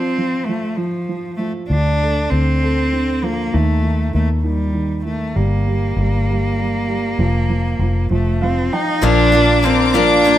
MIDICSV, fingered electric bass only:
0, 0, Header, 1, 2, 480
1, 0, Start_track
1, 0, Key_signature, -2, "major"
1, 0, Tempo, 610998
1, 1335, Time_signature, 6, 3, 24, 8
1, 8157, End_track
2, 0, Start_track
2, 0, Title_t, "Fingered electric bass"
2, 0, Program_c, 0, 33
2, 1335, Note_on_c, 0, 38, 78
2, 1789, Note_off_c, 0, 38, 0
2, 1820, Note_on_c, 0, 38, 80
2, 2749, Note_off_c, 0, 38, 0
2, 2784, Note_on_c, 0, 39, 84
2, 3230, Note_off_c, 0, 39, 0
2, 3258, Note_on_c, 0, 39, 85
2, 4178, Note_off_c, 0, 39, 0
2, 4212, Note_on_c, 0, 31, 80
2, 4659, Note_off_c, 0, 31, 0
2, 4686, Note_on_c, 0, 31, 85
2, 5613, Note_off_c, 0, 31, 0
2, 5647, Note_on_c, 0, 29, 82
2, 6097, Note_off_c, 0, 29, 0
2, 6121, Note_on_c, 0, 29, 82
2, 6350, Note_off_c, 0, 29, 0
2, 6370, Note_on_c, 0, 29, 76
2, 6823, Note_off_c, 0, 29, 0
2, 7093, Note_on_c, 0, 34, 103
2, 8157, Note_off_c, 0, 34, 0
2, 8157, End_track
0, 0, End_of_file